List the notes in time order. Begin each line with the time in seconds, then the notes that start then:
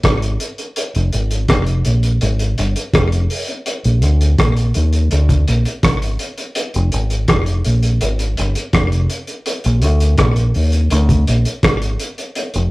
0.03 G#1, kick, cross-stick, closed hi-hat
0.22 closed hi-hat
0.40 closed hi-hat
0.58 closed hi-hat
0.76 closed hi-hat
0.95 F1, closed hi-hat
1.13 G#1, closed hi-hat
1.31 closed hi-hat
1.48 F1, kick, cross-stick, closed hi-hat
1.66 closed hi-hat
1.85 A#1, closed hi-hat
2.03 closed hi-hat
2.21 G#1, closed hi-hat
2.39 closed hi-hat
2.58 G1, closed hi-hat
2.76 closed hi-hat
2.94 F1, kick, cross-stick, closed hi-hat
3.12 closed hi-hat
3.30 open hi-hat
3.48 closed hi-hat
3.66 closed hi-hat
3.84 A#1, closed hi-hat
4.02 D2, closed hi-hat
4.21 closed hi-hat
4.38 A#1, kick, cross-stick, closed hi-hat
4.57 closed hi-hat
4.74 D#2, closed hi-hat
4.93 closed hi-hat
5.11 D2, closed hi-hat
5.29 kick, closed hi-hat
5.48 A#1, closed hi-hat
5.65 closed hi-hat
5.83 G#1, kick, cross-stick, closed hi-hat
6.02 closed hi-hat
6.19 closed hi-hat
6.38 closed hi-hat
6.55 closed hi-hat
6.74 F1, closed hi-hat
6.92 G#1, closed hi-hat
7.10 closed hi-hat
7.28 F1, kick, cross-stick, closed hi-hat
7.46 closed hi-hat
7.65 A#1, closed hi-hat
7.83 closed hi-hat
8.01 G#1, closed hi-hat
8.19 closed hi-hat
8.37 G1, closed hi-hat
8.55 closed hi-hat
8.73 F1, kick, cross-stick, closed hi-hat
8.92 closed hi-hat
9.10 closed hi-hat
9.27 closed hi-hat
9.46 closed hi-hat
9.64 A#1, closed hi-hat
9.82 D2, closed hi-hat
10.00 closed hi-hat
10.18 A#1, kick, cross-stick, closed hi-hat
10.36 closed hi-hat
10.54 D#2, open hi-hat
10.72 closed hi-hat
10.90 D2, closed hi-hat
11.09 kick, closed hi-hat
11.27 A#1, closed hi-hat
11.45 closed hi-hat
11.63 G#1, kick, cross-stick, closed hi-hat
11.82 closed hi-hat
12.00 closed hi-hat
12.18 closed hi-hat
12.35 closed hi-hat
12.54 F1, closed hi-hat